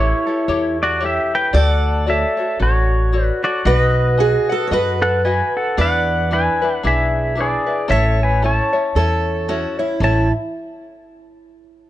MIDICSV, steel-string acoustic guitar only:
0, 0, Header, 1, 2, 480
1, 0, Start_track
1, 0, Key_signature, 3, "major"
1, 0, Tempo, 529568
1, 1402, Time_signature, 4, 2, 24, 8
1, 10785, End_track
2, 0, Start_track
2, 0, Title_t, "Steel-string acoustic guitar"
2, 0, Program_c, 0, 25
2, 0, Note_on_c, 0, 73, 95
2, 1174, Note_off_c, 0, 73, 0
2, 1399, Note_on_c, 0, 74, 113
2, 3286, Note_off_c, 0, 74, 0
2, 3325, Note_on_c, 0, 71, 103
2, 3808, Note_on_c, 0, 68, 98
2, 3819, Note_off_c, 0, 71, 0
2, 4093, Note_off_c, 0, 68, 0
2, 4098, Note_on_c, 0, 69, 92
2, 4228, Note_off_c, 0, 69, 0
2, 4236, Note_on_c, 0, 73, 64
2, 4286, Note_off_c, 0, 73, 0
2, 4290, Note_on_c, 0, 71, 99
2, 5210, Note_off_c, 0, 71, 0
2, 5242, Note_on_c, 0, 74, 89
2, 7172, Note_off_c, 0, 74, 0
2, 7175, Note_on_c, 0, 73, 98
2, 8118, Note_off_c, 0, 73, 0
2, 8122, Note_on_c, 0, 69, 86
2, 8600, Note_on_c, 0, 66, 76
2, 8616, Note_off_c, 0, 69, 0
2, 8860, Note_off_c, 0, 66, 0
2, 8875, Note_on_c, 0, 64, 61
2, 9064, Note_off_c, 0, 64, 0
2, 9095, Note_on_c, 0, 64, 68
2, 9348, Note_off_c, 0, 64, 0
2, 10785, End_track
0, 0, End_of_file